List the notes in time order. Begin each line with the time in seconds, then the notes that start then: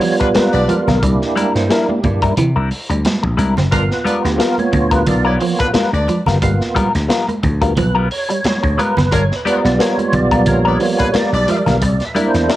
Already playing: G3 B3 F4 C#5
0.01 F3, open hi-hat, muted conga
0.20 D4 F4 B4, muted clean electric guitar stroke, kick, closed hi-hat
0.35 G3 B3 F4 A#4, muted slap bass stroke, snare, closed hi-hat, muted conga, high conga
0.53 B1 D4 B4 D5, closed hi-hat
0.68 F3 A#4, muted clean electric guitar stroke, closed hi-hat, muted conga, high conga
0.88 B1 G3 B3 F4 A#4, snare, closed hi-hat, low conga
1.02 C2 G3 A#3 D4 E4 G4, kick, closed hi-hat, muted conga
1.22 snare
1.36 G3 D4 E4 A#4, closed hi-hat, muted conga, high conga
1.55 G2 C5, muted clean electric guitar stroke, snare, closed hi-hat
1.70 G3 D4 E4 A#4, snare, closed hi-hat
1.89 A#3 G4, high conga
2.04 G2 A#3 D4 E4, muted clean electric guitar stroke, kick, closed hi-hat, muted conga, low conga
2.22 G3 D4 E4 A#4, kick, closed hi-hat
2.37 C3 E3, muted clean electric guitar stroke, closed hi-hat, low conga
2.56 C2 G3 D4 E4 A#4, muted clean electric guitar stroke
2.71 open hi-hat, muted conga
2.90 D2 G3, muted clean electric guitar stroke, closed hi-hat
3.05 G3, snare, closed hi-hat, muted conga, high conga
3.23 A#1, muted clean electric guitar stroke, kick
3.37 C2 G3 D4 E4 A#4, muted clean electric guitar stroke, closed hi-hat, muted conga, high conga
3.57 F#1 C4, snare, closed hi-hat, low conga
3.71 G1 G3 B3 D4 F4 A#4, kick, closed hi-hat, muted conga
3.91 B4, snare
4.05 G3 B3 D4 F4 A#4 B4 D5, muted clean electric guitar stroke, closed hi-hat, high conga
4.25 D2 B3 G4, snare, closed hi-hat
4.38 G3 B3 F4 A#4, snare, closed hi-hat, muted conga
4.58 A#3 C#5, closed hi-hat, high conga
4.72 D2, muted clean electric guitar stroke, kick, closed hi-hat, muted conga, low conga
4.91 G3 B3 F4 A#4 B4, kick, closed hi-hat
5.07 B1 D4 F4 A#4 D5, kick, closed hi-hat, muted conga, low conga
5.25 G3 B3 D4 F4 A#4 B4 C#5 D5
5.41 F3 A#3 B3 F4, open hi-hat, muted conga
5.59 D4 F4 B4, muted clean electric guitar stroke, kick, closed hi-hat
5.74 G3 B3 F4 A#4, muted slap bass stroke, snare, closed hi-hat, muted conga, high conga
5.93 D2 D4 B4 D5, closed hi-hat
6.08 F3, muted clean electric guitar stroke, closed hi-hat, muted conga, high conga
6.26 F#1 G3 B3 F4 A#4, snare, closed hi-hat, low conga
6.42 G1 G3 A#3 B3 F4, kick, closed hi-hat
6.61 snare
6.75 G3 B3 F4 A#4, kick, closed hi-hat, high conga
6.95 D2, muted clean electric guitar stroke, snare, closed hi-hat
7.08 G3 B3 F4 A#4, snare, closed hi-hat, muted conga
7.28 A#3, closed hi-hat, high conga
7.43 D2, muted clean electric guitar stroke, kick, closed hi-hat, muted conga, low conga
7.62 G3 B3 F4 A#4, kick, closed hi-hat
7.77 B1 F3 B4, muted clean electric guitar stroke, kick, closed hi-hat, low conga
7.95 G3 B3 F4 A#4, muted clean electric guitar stroke
8.11 C#5, muted clean electric guitar stroke, open hi-hat
8.29 G3, muted clean electric guitar stroke, closed hi-hat
8.44 G3, muted slap bass stroke, snare, closed hi-hat, high conga
8.63 D2, muted clean electric guitar stroke, kick, closed hi-hat
8.78 G3 B3 F4 A#4 B4, muted clean electric guitar stroke, closed hi-hat, high conga
8.97 F#1 B3, snare, closed hi-hat, low conga
9.11 G1 G3 D4 F4 A#4 C#5, kick, closed hi-hat, muted conga
9.32 B4, snare
9.45 G3 B3 D4 F4 A#4 B4 D5, muted clean electric guitar stroke, closed hi-hat, high conga
9.58 D5
9.64 B1 B3, snare, closed hi-hat
9.79 G3 B3 F4 A#4 C#5, snare, closed hi-hat, muted conga
9.98 A#3, closed hi-hat, high conga
10.13 B1 D5, muted clean electric guitar stroke, kick, closed hi-hat, muted conga, low conga
10.31 G3 B3 F4 A#4, kick, closed hi-hat
10.46 A#1 D4 F4 A#4 C#5, kick, closed hi-hat, low conga
10.65 G3 B3 D4 F4 A#4 B4 D5
10.79 F3 A#3 B3 F4 C#5, muted clean electric guitar stroke, open hi-hat, muted conga
10.99 D4 F4 B4, muted clean electric guitar stroke, kick, closed hi-hat
11.13 G3 B3 F4 A#4 D5, muted slap bass stroke, snare, closed hi-hat, high conga
11.33 B1 D4 B4 D5, closed hi-hat
11.47 F3 A#4, muted clean electric guitar stroke, closed hi-hat, muted conga, high conga
11.66 B1 G3 B3 F4 A#4, snare, closed hi-hat, low conga
11.82 C2 G3 D5, kick, closed hi-hat
12.00 snare, closed hi-hat
12.05 E5
12.15 G3 A#3 D4 E4 A#4, closed hi-hat, muted conga, high conga
12.27 C5
12.34 E2, muted clean electric guitar stroke, snare, closed hi-hat
12.48 G3 D4 E4 A#4, snare, closed hi-hat